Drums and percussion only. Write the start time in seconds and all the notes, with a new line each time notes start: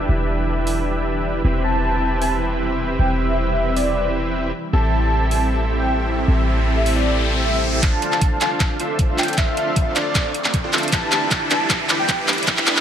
0.67 open hi-hat
2.22 open hi-hat
3.77 open hi-hat
5.31 open hi-hat
6.86 open hi-hat
7.83 kick, clap, closed hi-hat
8.02 closed hi-hat
8.12 clap
8.21 kick, closed hi-hat
8.41 clap, closed hi-hat
8.60 kick, clap, closed hi-hat
8.80 closed hi-hat
8.99 kick, closed hi-hat
9.18 clap, closed hi-hat
9.23 closed hi-hat
9.28 closed hi-hat
9.33 closed hi-hat
9.38 kick, clap, closed hi-hat
9.57 closed hi-hat
9.76 kick, closed hi-hat
9.96 clap, closed hi-hat
10.15 kick, clap, closed hi-hat
10.34 closed hi-hat
10.44 clap
10.54 kick, closed hi-hat
10.73 clap, closed hi-hat
10.78 closed hi-hat
10.83 closed hi-hat
10.88 closed hi-hat
10.92 kick, clap, closed hi-hat
11.12 clap, closed hi-hat
11.31 kick, clap, closed hi-hat
11.51 clap, closed hi-hat
11.70 kick, clap, closed hi-hat
11.89 clap, closed hi-hat
12.09 kick, clap, closed hi-hat
12.28 clap, closed hi-hat
12.33 closed hi-hat
12.38 closed hi-hat
12.43 closed hi-hat
12.47 kick, clap, closed hi-hat
12.57 clap
12.67 clap, closed hi-hat
12.77 clap